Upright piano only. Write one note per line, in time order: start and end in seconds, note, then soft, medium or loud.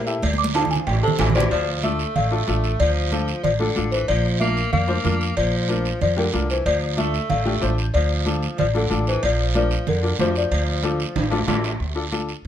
0.06 0.23 E4 medium
0.06 0.23 G4 medium
0.06 0.23 A4 medium
0.54 0.77 D4 medium
0.54 0.77 F4 medium
0.54 0.78 A4 medium
1.19 1.25 D4 medium
1.19 1.25 F4 medium
1.19 1.25 A4 medium
1.35 1.51 D4 medium
1.35 1.51 F4 medium
1.35 1.52 G4 medium
1.83 2.00 D4 medium
1.83 2.01 F4 medium
1.83 2.01 A4 medium
2.31 2.37 D4 medium
2.31 2.37 F4 medium
2.31 2.38 A4 medium
2.47 2.70 D4 medium
2.47 2.70 F4 medium
2.47 2.71 A4 medium
3.12 3.29 D4 medium
3.12 3.29 F4 medium
3.12 3.29 A4 medium
3.59 3.66 D4 medium
3.59 3.66 F4 medium
3.59 3.66 A4 medium
3.76 3.99 D4 medium
3.76 3.99 F4 medium
3.76 3.99 A4 medium
4.40 4.57 D4 medium
4.40 4.57 F4 medium
4.40 4.58 A#4 medium
4.87 4.94 D4 medium
4.87 4.94 F4 medium
4.87 4.94 C5 medium
5.04 5.27 D4 medium
5.04 5.27 F4 medium
5.04 5.28 A#4 medium
5.68 5.86 D4 medium
5.68 5.86 F4 medium
5.68 5.86 A#4 medium
6.16 6.23 D4 medium
6.16 6.23 F4 medium
6.16 6.23 G4 medium
6.33 6.56 D4 medium
6.33 6.56 F4 medium
6.33 6.57 A#4 medium
6.97 7.14 D4 medium
6.97 7.15 F4 medium
6.97 7.15 A4 medium
7.45 7.51 D4 medium
7.45 7.51 F4 medium
7.45 7.52 G4 medium
7.61 7.84 D4 medium
7.61 7.84 F4 medium
7.61 7.85 C5 medium
8.26 8.43 D4 medium
8.26 8.43 F4 medium
8.26 8.44 A4 medium
8.74 8.80 D4 medium
8.74 8.80 F4 medium
8.74 8.81 A4 medium
8.90 9.13 D4 medium
8.90 9.13 F4 medium
8.90 9.13 A4 medium
9.54 9.72 D4 medium
9.54 9.72 F4 medium
9.54 9.72 A#4 medium
10.03 10.09 D4 medium
10.03 10.09 F4 medium
10.03 10.09 A#4 medium
10.19 10.42 D4 medium
10.19 10.42 F4 medium
10.19 10.42 C5 medium
10.83 11.00 D4 medium
10.83 11.00 F4 medium
10.83 11.01 A4 medium
11.31 11.37 D4 medium
11.31 11.37 F4 medium
11.31 11.37 A4 medium
11.47 11.70 D4 medium
11.47 11.71 F4 medium
11.47 11.71 A4 medium
11.95 12.01 D4 medium
11.95 12.02 F4 medium
11.95 12.02 A4 medium
12.12 12.29 D4 medium
12.12 12.29 F4 medium
12.12 12.29 A4 medium